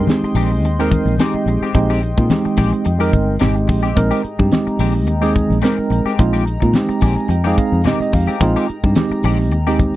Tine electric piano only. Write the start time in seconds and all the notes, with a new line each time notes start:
0.08 G#3 C4 D#4 G4
0.79 G#3 C4 D#4 A#4
1.20 G#3 C4 D#4 G4
1.74 G#3 C4 D#4 G4
2.17 G#3 C4 D#4 F4
2.29 G#3 C4 D#4 G4
2.99 G#3 C4 D#4 A#4
3.40 G#3 C4 D#4 G4 G5
3.69 D#5
3.96 G#3 C4 D#4 A#4
4.24 D#4
4.39 G#3 C4 D#4 G4
4.52 G#3 C4 D#4 G4
5.21 G#3 C4 D#4 G#4
5.63 G#3 C4 D#4 A#4
6.19 G#3 C4 D#4 F4
6.47 D#4
6.62 G#3 C4 D#4 F4
6.74 G#3 C4 D#4 G4
7.04 G#5
7.31 G5
7.46 G#3 C4 D#4 G#4 F5
7.59 F5
7.86 G#3 C4 D#4 G4 D#5
8.02 D#5
8.14 F5
8.41 G#3 C4 D#4 F4
8.84 G#3 C4 D#4 G4
8.96 G#3 C4 D#4 G4
9.67 G#3 C4 D#4 G4